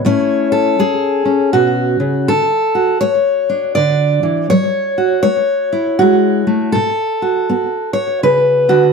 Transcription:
0.05 0.74 A2 medium
0.05 0.79 A3 soft
0.05 1.25 C#4 soft
0.05 0.79 E4 soft
0.05 0.51 C#5 loud
0.52 1.54 A4 medium
0.79 1.48 A3 medium
0.79 1.53 G#4 medium
1.25 2.31 C#4 soft
1.53 1.99 B2 medium
1.53 2.28 F#4 medium
2.00 2.28 C#3 medium
2.28 2.97 D3 medium
2.28 3.00 A4 medium
2.75 4.97 F#4 soft
3.01 3.71 A3 medium
3.01 3.75 C#5 loud
3.49 4.49 D4 soft
3.75 4.23 D3 medium
3.75 4.49 D5 loud
4.23 4.51 E3 medium
4.50 5.20 F#3 medium
4.50 5.21 C#5 loud
4.98 5.98 F#4 soft
5.23 5.94 A3 medium
5.23 6.72 C#5 loud
5.73 6.72 E4 soft
5.99 6.46 G#3 medium
5.99 6.74 F#4 medium
6.47 6.75 A3 medium
6.72 7.44 B2 medium
6.72 7.93 A4 loud
7.22 7.50 F#4 soft
7.49 8.18 B3 medium
7.49 8.69 F#4 soft
7.93 8.23 C#5 medium
8.23 8.69 C#3 medium
8.23 8.93 B4 medium
8.69 8.93 D3 medium
8.69 8.93 F#4 medium

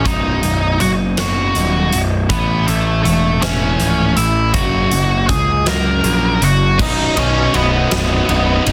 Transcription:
0.05 0.40 B0 medium
0.05 0.41 B1 medium
0.05 0.41 F#2 medium
0.05 0.41 B2 medium
0.05 0.77 D#4 medium
0.05 0.80 D#5 medium
0.05 kick loud
0.05 closed hi-hat medium
0.43 0.77 B0 medium
0.43 0.77 B1 medium
0.43 0.77 F#2 medium
0.43 1.92 B2 medium
0.43 closed hi-hat medium
0.80 1.52 F#1 medium
0.80 1.14 B1 medium
0.80 1.14 F#2 medium
0.80 1.55 D#4 medium
0.80 0.91 F#4 medium
0.80 0.91 F#5 medium
0.80 closed hi-hat medium
1.17 1.90 B1 medium
1.17 1.90 F#2 medium
1.17 1.91 B2 loud
1.17 2.31 F#3 medium
1.17 1.99 F#4 medium
1.17 1.98 F#5 medium
1.17 snare medium
1.17 closed hi-hat medium
1.55 1.90 D#1 medium
1.55 2.30 D#4 medium
1.55 closed hi-hat medium
1.92 2.27 B0 medium
1.92 2.26 B1 medium
1.92 2.27 F#2 medium
1.92 2.30 B2 medium
1.92 closed hi-hat medium
2.29 2.64 A1 medium
2.29 2.65 A2 medium
2.29 2.65 E3 medium
2.29 2.65 A3 loud
2.29 2.65 B3 medium
2.29 2.68 B4 medium
2.29 kick loud
2.29 closed hi-hat medium
2.67 3.02 A1 medium
2.67 3.01 A2 medium
2.67 3.01 E3 medium
2.67 3.02 A3 medium
2.67 3.02 A4 medium
2.67 closed hi-hat medium
3.03 3.76 E1 medium
3.03 3.38 A2 medium
3.03 3.38 E3 medium
3.03 3.39 A3 medium
3.03 3.43 A4 medium
3.03 closed hi-hat medium
3.41 4.14 A2 medium
3.41 4.15 E3 medium
3.41 4.15 A3 loud
3.41 4.13 C#4 medium
3.41 4.13 C#5 medium
3.41 snare loud
3.41 closed hi-hat medium
3.80 4.14 C#1 medium
3.80 closed hi-hat medium
4.17 4.51 A1 medium
4.17 4.51 A2 medium
4.17 4.51 E3 medium
4.17 4.52 E4 medium
4.17 4.54 E5 medium
4.17 closed hi-hat medium
4.54 4.89 F#1 medium
4.54 4.89 F#2 medium
4.54 4.90 C#3 loud
4.54 4.90 F#3 loud
4.54 5.25 F#4 medium
4.54 5.29 F#5 medium
4.54 kick loud
4.54 closed hi-hat medium
4.91 5.26 F#1 medium
4.91 5.25 F#2 medium
4.91 5.26 C#3 medium
4.91 closed hi-hat medium
5.29 6.00 C#2 medium
5.29 5.63 F#2 medium
5.29 5.63 C#3 medium
5.29 5.64 G#4 medium
5.29 5.68 G#5 medium
5.29 kick medium
5.29 closed hi-hat medium
5.66 6.39 F#2 medium
5.66 6.39 C#3 medium
5.66 6.40 F#3 loud
5.66 6.47 A#4 medium
5.66 6.48 A#5 loud
5.66 snare loud
5.66 closed hi-hat medium
6.04 6.38 A#1 medium
6.04 closed hi-hat medium
6.42 6.79 F#1 medium
6.42 6.75 F#2 medium
6.42 6.75 C#3 medium
6.42 6.78 F#4 medium
6.42 6.82 F#5 loud
6.42 closed hi-hat medium
6.78 7.09 B0 loud
6.78 8.72 B1 medium
6.78 7.52 F#2 medium
6.78 7.17 B2 medium
6.78 7.17 F#3 medium
6.78 7.16 D#4 loud
6.78 7.15 D#4 medium
6.78 7.18 D#5 loud
6.78 kick loud
6.78 crash loud
7.16 7.47 B1 medium
7.16 7.54 B2 medium
7.16 7.54 F#3 medium
7.16 7.52 C#4 medium
7.16 7.55 D#4 medium
7.16 7.56 C#5 medium
7.16 ride medium
7.53 7.84 B0 medium
7.53 8.28 F#2 medium
7.53 7.92 B2 medium
7.53 7.92 F#3 medium
7.53 8.62 B3 medium
7.53 7.91 D#4 medium
7.53 8.62 B4 medium
7.53 ride medium
7.91 8.22 B0 medium
7.91 8.29 B2 medium
7.91 8.30 F#3 medium
7.91 8.31 D#4 medium
7.91 snare loud
7.91 ride medium
8.29 8.59 B0 medium
8.29 8.72 F#2 medium
8.29 8.66 B2 medium
8.29 8.67 F#3 medium
8.29 8.65 D#4 medium
8.29 ride medium
8.66 8.72 F#1 medium
8.66 8.72 B2 medium
8.66 8.72 F#3 medium
8.66 8.72 D#4 medium
8.66 ride medium

